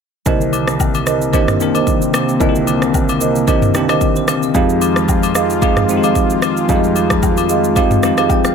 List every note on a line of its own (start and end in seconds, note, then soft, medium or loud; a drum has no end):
0.26 2.37 C2 medium
0.26 4.51 C3 medium
0.26 1.13 D3 medium
0.26 1.12 D#3 medium
0.26 4.51 A#3 medium
0.26 1.13 A#3 medium
0.26 4.51 C4 medium
0.26 1.13 C4 medium
0.26 1.14 G4 medium
0.26 0.76 A#4 medium
0.26 0.76 C5 medium
0.26 0.76 D#5 loud
0.26 kick loud
0.26 shaker medium
0.41 shaker medium
0.53 high agogo medium
0.53 shaker medium
0.68 cross-stick medium
0.68 shaker medium
0.80 kick loud
0.80 low woodblock medium
0.80 shaker medium
0.94 high agogo medium
0.94 shaker medium
1.06 1.22 A#4 medium
1.06 1.22 C5 medium
1.06 1.22 D#5 medium
1.06 cross-stick medium
1.06 shaker medium
1.21 shaker soft
1.33 1.55 D#3 medium
1.33 1.55 A#3 medium
1.33 1.56 C4 medium
1.33 1.56 D4 medium
1.33 1.56 G4 medium
1.33 1.71 A#4 loud
1.33 1.71 C5 medium
1.33 1.71 D#5 loud
1.33 kick loud
1.33 high agogo medium
1.33 shaker medium
1.48 cross-stick medium
1.48 mid tom medium
1.48 shaker soft
1.60 2.25 D#3 medium
1.60 2.26 A#3 medium
1.60 2.26 C4 medium
1.60 2.26 D4 medium
1.60 2.27 A#4 medium
1.60 shaker medium
1.74 1.87 A#4 medium
1.74 1.87 C5 medium
1.74 1.88 D#5 medium
1.74 high agogo medium
1.74 shaker medium
1.87 kick loud
1.87 shaker medium
2.02 shaker medium
2.14 cross-stick loud
2.14 high agogo medium
2.14 shaker medium
2.29 shaker soft
2.40 4.51 C2 medium
2.40 3.27 D3 medium
2.40 3.26 D#3 medium
2.40 3.27 A#3 medium
2.40 3.27 C4 medium
2.40 2.49 F4 medium
2.40 2.90 A#4 medium
2.40 2.90 C5 medium
2.40 2.90 D#5 loud
2.40 kick loud
2.40 shaker medium
2.49 3.31 G4 medium
2.55 shaker medium
2.67 high agogo medium
2.67 shaker medium
2.82 cross-stick medium
2.82 shaker medium
2.94 kick medium
2.94 low woodblock medium
2.94 shaker medium
3.09 high agogo medium
3.09 shaker medium
3.20 3.36 A#4 medium
3.20 3.36 C5 medium
3.20 3.36 D#5 medium
3.20 shaker medium
3.36 shaker soft
3.47 3.69 D#3 medium
3.47 3.70 A#3 medium
3.47 3.70 C4 medium
3.47 3.70 D4 medium
3.47 3.71 G4 medium
3.47 3.85 A#4 medium
3.47 3.86 C5 medium
3.47 3.86 D#5 loud
3.47 kick loud
3.47 high agogo medium
3.47 shaker medium
3.62 mid tom medium
3.62 shaker soft
3.74 4.40 D#3 medium
3.74 4.40 A#3 medium
3.74 4.40 C4 medium
3.74 4.41 D4 medium
3.74 4.41 G4 medium
3.74 cross-stick medium
3.74 shaker loud
3.89 4.02 A#4 medium
3.89 4.02 C5 medium
3.89 4.02 D#5 medium
3.89 cross-stick medium
3.89 high agogo medium
3.89 shaker medium
4.01 kick loud
4.01 shaker medium
4.16 4.28 C5 medium
4.16 shaker medium
4.28 4.42 F5 medium
4.28 cross-stick loud
4.28 high agogo medium
4.28 shaker medium
4.43 4.69 D#5 medium
4.43 shaker soft
4.54 6.65 F2 medium
4.54 8.55 D#3 medium
4.54 5.41 F3 medium
4.54 8.55 G#3 medium
4.54 5.41 G#3 medium
4.54 5.41 C4 medium
4.54 5.42 D#4 medium
4.54 8.55 F4 medium
4.54 5.42 G4 loud
4.54 5.04 G#4 medium
4.54 5.04 D#5 medium
4.54 5.05 F5 loud
4.54 kick loud
4.54 shaker medium
4.70 shaker medium
4.82 high agogo medium
4.82 shaker medium
4.96 cross-stick medium
4.96 shaker medium
5.08 kick loud
5.08 low woodblock medium
5.08 shaker medium
5.23 high agogo medium
5.23 shaker medium
5.35 5.50 G#4 medium
5.35 5.50 D#5 medium
5.35 5.51 F5 medium
5.35 cross-stick medium
5.35 shaker loud
5.50 shaker soft
5.61 5.84 F3 medium
5.61 5.84 G#3 medium
5.61 5.84 C4 medium
5.61 5.85 D#4 medium
5.61 6.00 G#4 medium
5.61 5.85 G#4 medium
5.61 6.00 D#5 medium
5.61 6.00 F5 loud
5.61 kick loud
5.61 high agogo medium
5.61 shaker medium
5.77 cross-stick medium
5.77 mid tom medium
5.77 shaker soft
5.88 6.54 F3 medium
5.88 6.54 G#3 medium
5.88 6.54 C4 medium
5.88 6.55 D#4 medium
5.88 5.97 F#4 medium
5.88 shaker loud
5.97 6.58 G4 medium
6.03 6.16 G#4 medium
6.03 6.16 D#5 medium
6.03 6.16 F5 medium
6.03 high agogo medium
6.03 shaker medium
6.15 kick loud
6.15 shaker medium
6.30 shaker medium
6.42 cross-stick loud
6.42 high agogo medium
6.42 shaker medium
6.57 shaker soft
6.68 8.55 F2 medium
6.68 7.55 F3 medium
6.68 6.76 G3 medium
6.68 7.56 C4 medium
6.68 7.56 D#4 medium
6.68 7.56 G4 medium
6.68 7.19 G#4 medium
6.68 7.19 D#5 medium
6.68 7.19 F5 loud
6.68 kick loud
6.68 shaker medium
6.76 7.59 G#3 medium
6.84 shaker medium
6.96 high agogo medium
6.96 shaker medium
7.10 kick medium
7.10 cross-stick loud
7.10 shaker medium
7.23 kick loud
7.23 low woodblock medium
7.23 shaker medium
7.37 high agogo medium
7.37 shaker medium
7.49 7.65 G#4 medium
7.49 7.65 D#5 medium
7.49 7.65 F5 medium
7.49 shaker loud
7.64 shaker soft
7.76 7.98 F3 medium
7.76 7.98 G#3 medium
7.76 7.99 C4 medium
7.76 7.99 D#4 medium
7.76 7.99 G4 medium
7.76 8.14 G#4 medium
7.76 8.14 D#5 medium
7.76 8.14 F5 loud
7.76 kick loud
7.76 high agogo medium
7.76 shaker medium
7.91 mid tom medium
7.91 shaker soft
8.03 8.55 F3 medium
8.03 8.55 G#3 medium
8.03 8.55 C4 medium
8.03 8.55 D#4 medium
8.03 8.55 G4 medium
8.03 cross-stick medium
8.03 shaker medium
8.17 8.30 G#4 medium
8.17 8.30 D#5 medium
8.17 8.30 F5 medium
8.17 cross-stick medium
8.17 high agogo medium
8.17 shaker medium
8.29 8.44 G5 medium
8.29 kick loud
8.29 low woodblock medium
8.29 shaker medium
8.44 8.55 F5 medium
8.44 cross-stick medium
8.44 shaker medium